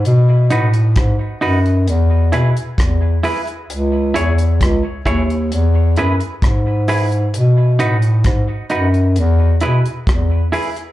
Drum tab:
HH |x-xxx-oxx-xxx-ox|x-xxx-xxx-xxx-ox|x-xxx-xxx-xxx-ox|
SD |----r-------r---|----r-------r---|----r-------r---|
BD |----o-------o---|----o-o-----o---|----o-------o---|